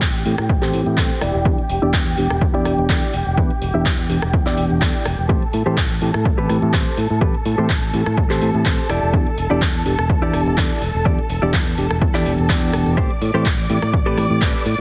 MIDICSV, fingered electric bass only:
0, 0, Header, 1, 2, 480
1, 0, Start_track
1, 0, Key_signature, 0, "minor"
1, 0, Tempo, 480000
1, 1456, Time_signature, 4, 2, 24, 8
1, 14806, End_track
2, 0, Start_track
2, 0, Title_t, "Fingered electric bass"
2, 0, Program_c, 0, 33
2, 15, Note_on_c, 0, 33, 88
2, 219, Note_off_c, 0, 33, 0
2, 256, Note_on_c, 0, 45, 96
2, 364, Note_off_c, 0, 45, 0
2, 385, Note_on_c, 0, 45, 84
2, 478, Note_off_c, 0, 45, 0
2, 495, Note_on_c, 0, 33, 88
2, 699, Note_off_c, 0, 33, 0
2, 735, Note_on_c, 0, 45, 86
2, 843, Note_off_c, 0, 45, 0
2, 863, Note_on_c, 0, 45, 96
2, 957, Note_off_c, 0, 45, 0
2, 974, Note_on_c, 0, 33, 89
2, 1083, Note_off_c, 0, 33, 0
2, 1216, Note_on_c, 0, 28, 81
2, 1324, Note_off_c, 0, 28, 0
2, 1343, Note_on_c, 0, 28, 83
2, 1437, Note_off_c, 0, 28, 0
2, 1454, Note_on_c, 0, 40, 98
2, 1563, Note_off_c, 0, 40, 0
2, 1696, Note_on_c, 0, 28, 98
2, 1803, Note_off_c, 0, 28, 0
2, 1824, Note_on_c, 0, 28, 105
2, 1918, Note_off_c, 0, 28, 0
2, 1935, Note_on_c, 0, 40, 90
2, 2139, Note_off_c, 0, 40, 0
2, 2175, Note_on_c, 0, 28, 90
2, 2283, Note_off_c, 0, 28, 0
2, 2305, Note_on_c, 0, 28, 83
2, 2398, Note_off_c, 0, 28, 0
2, 2414, Note_on_c, 0, 40, 83
2, 2619, Note_off_c, 0, 40, 0
2, 2657, Note_on_c, 0, 28, 80
2, 2764, Note_off_c, 0, 28, 0
2, 2784, Note_on_c, 0, 28, 101
2, 2878, Note_off_c, 0, 28, 0
2, 2895, Note_on_c, 0, 40, 98
2, 3003, Note_off_c, 0, 40, 0
2, 3137, Note_on_c, 0, 28, 76
2, 3244, Note_off_c, 0, 28, 0
2, 3264, Note_on_c, 0, 28, 83
2, 3358, Note_off_c, 0, 28, 0
2, 3375, Note_on_c, 0, 40, 94
2, 3483, Note_off_c, 0, 40, 0
2, 3616, Note_on_c, 0, 28, 96
2, 3724, Note_off_c, 0, 28, 0
2, 3745, Note_on_c, 0, 28, 100
2, 3838, Note_off_c, 0, 28, 0
2, 3855, Note_on_c, 0, 40, 87
2, 4059, Note_off_c, 0, 40, 0
2, 4097, Note_on_c, 0, 28, 92
2, 4204, Note_off_c, 0, 28, 0
2, 4225, Note_on_c, 0, 28, 85
2, 4318, Note_off_c, 0, 28, 0
2, 4335, Note_on_c, 0, 40, 83
2, 4539, Note_off_c, 0, 40, 0
2, 4576, Note_on_c, 0, 28, 82
2, 4684, Note_off_c, 0, 28, 0
2, 4704, Note_on_c, 0, 28, 95
2, 4798, Note_off_c, 0, 28, 0
2, 4815, Note_on_c, 0, 40, 93
2, 4923, Note_off_c, 0, 40, 0
2, 5056, Note_on_c, 0, 28, 80
2, 5163, Note_off_c, 0, 28, 0
2, 5185, Note_on_c, 0, 28, 81
2, 5278, Note_off_c, 0, 28, 0
2, 5295, Note_on_c, 0, 33, 97
2, 5403, Note_off_c, 0, 33, 0
2, 5536, Note_on_c, 0, 45, 98
2, 5644, Note_off_c, 0, 45, 0
2, 5665, Note_on_c, 0, 45, 103
2, 5758, Note_off_c, 0, 45, 0
2, 5774, Note_on_c, 0, 33, 91
2, 5979, Note_off_c, 0, 33, 0
2, 6017, Note_on_c, 0, 45, 94
2, 6124, Note_off_c, 0, 45, 0
2, 6144, Note_on_c, 0, 45, 84
2, 6238, Note_off_c, 0, 45, 0
2, 6254, Note_on_c, 0, 33, 83
2, 6459, Note_off_c, 0, 33, 0
2, 6496, Note_on_c, 0, 45, 84
2, 6603, Note_off_c, 0, 45, 0
2, 6623, Note_on_c, 0, 45, 98
2, 6717, Note_off_c, 0, 45, 0
2, 6734, Note_on_c, 0, 33, 97
2, 6843, Note_off_c, 0, 33, 0
2, 6975, Note_on_c, 0, 45, 78
2, 7083, Note_off_c, 0, 45, 0
2, 7103, Note_on_c, 0, 45, 84
2, 7197, Note_off_c, 0, 45, 0
2, 7214, Note_on_c, 0, 33, 94
2, 7323, Note_off_c, 0, 33, 0
2, 7455, Note_on_c, 0, 45, 96
2, 7563, Note_off_c, 0, 45, 0
2, 7584, Note_on_c, 0, 45, 109
2, 7678, Note_off_c, 0, 45, 0
2, 7694, Note_on_c, 0, 33, 83
2, 7899, Note_off_c, 0, 33, 0
2, 7936, Note_on_c, 0, 45, 92
2, 8044, Note_off_c, 0, 45, 0
2, 8064, Note_on_c, 0, 45, 85
2, 8158, Note_off_c, 0, 45, 0
2, 8175, Note_on_c, 0, 33, 89
2, 8379, Note_off_c, 0, 33, 0
2, 8417, Note_on_c, 0, 45, 86
2, 8524, Note_off_c, 0, 45, 0
2, 8544, Note_on_c, 0, 45, 95
2, 8638, Note_off_c, 0, 45, 0
2, 8655, Note_on_c, 0, 33, 89
2, 8763, Note_off_c, 0, 33, 0
2, 8897, Note_on_c, 0, 28, 84
2, 9004, Note_off_c, 0, 28, 0
2, 9026, Note_on_c, 0, 28, 81
2, 9119, Note_off_c, 0, 28, 0
2, 9136, Note_on_c, 0, 40, 98
2, 9243, Note_off_c, 0, 40, 0
2, 9376, Note_on_c, 0, 28, 97
2, 9484, Note_off_c, 0, 28, 0
2, 9506, Note_on_c, 0, 28, 104
2, 9598, Note_off_c, 0, 28, 0
2, 9616, Note_on_c, 0, 40, 88
2, 9820, Note_off_c, 0, 40, 0
2, 9857, Note_on_c, 0, 28, 90
2, 9964, Note_off_c, 0, 28, 0
2, 9985, Note_on_c, 0, 28, 85
2, 10078, Note_off_c, 0, 28, 0
2, 10096, Note_on_c, 0, 40, 88
2, 10300, Note_off_c, 0, 40, 0
2, 10336, Note_on_c, 0, 28, 85
2, 10444, Note_off_c, 0, 28, 0
2, 10464, Note_on_c, 0, 28, 99
2, 10558, Note_off_c, 0, 28, 0
2, 10576, Note_on_c, 0, 40, 95
2, 10683, Note_off_c, 0, 40, 0
2, 10816, Note_on_c, 0, 28, 78
2, 10924, Note_off_c, 0, 28, 0
2, 10944, Note_on_c, 0, 28, 86
2, 11038, Note_off_c, 0, 28, 0
2, 11056, Note_on_c, 0, 40, 95
2, 11164, Note_off_c, 0, 40, 0
2, 11296, Note_on_c, 0, 28, 94
2, 11403, Note_off_c, 0, 28, 0
2, 11425, Note_on_c, 0, 28, 106
2, 11518, Note_off_c, 0, 28, 0
2, 11536, Note_on_c, 0, 40, 88
2, 11740, Note_off_c, 0, 40, 0
2, 11777, Note_on_c, 0, 28, 92
2, 11884, Note_off_c, 0, 28, 0
2, 11906, Note_on_c, 0, 28, 86
2, 11999, Note_off_c, 0, 28, 0
2, 12016, Note_on_c, 0, 40, 85
2, 12220, Note_off_c, 0, 40, 0
2, 12257, Note_on_c, 0, 28, 86
2, 12364, Note_off_c, 0, 28, 0
2, 12383, Note_on_c, 0, 28, 98
2, 12477, Note_off_c, 0, 28, 0
2, 12496, Note_on_c, 0, 40, 94
2, 12700, Note_off_c, 0, 40, 0
2, 12736, Note_on_c, 0, 28, 82
2, 12843, Note_off_c, 0, 28, 0
2, 12864, Note_on_c, 0, 28, 84
2, 12958, Note_off_c, 0, 28, 0
2, 12975, Note_on_c, 0, 33, 91
2, 13083, Note_off_c, 0, 33, 0
2, 13216, Note_on_c, 0, 45, 97
2, 13323, Note_off_c, 0, 45, 0
2, 13344, Note_on_c, 0, 45, 107
2, 13438, Note_off_c, 0, 45, 0
2, 13455, Note_on_c, 0, 33, 86
2, 13659, Note_off_c, 0, 33, 0
2, 13697, Note_on_c, 0, 45, 92
2, 13804, Note_off_c, 0, 45, 0
2, 13825, Note_on_c, 0, 45, 81
2, 13918, Note_off_c, 0, 45, 0
2, 13935, Note_on_c, 0, 33, 85
2, 14139, Note_off_c, 0, 33, 0
2, 14176, Note_on_c, 0, 45, 82
2, 14284, Note_off_c, 0, 45, 0
2, 14303, Note_on_c, 0, 45, 100
2, 14397, Note_off_c, 0, 45, 0
2, 14416, Note_on_c, 0, 33, 92
2, 14523, Note_off_c, 0, 33, 0
2, 14656, Note_on_c, 0, 45, 84
2, 14764, Note_off_c, 0, 45, 0
2, 14806, End_track
0, 0, End_of_file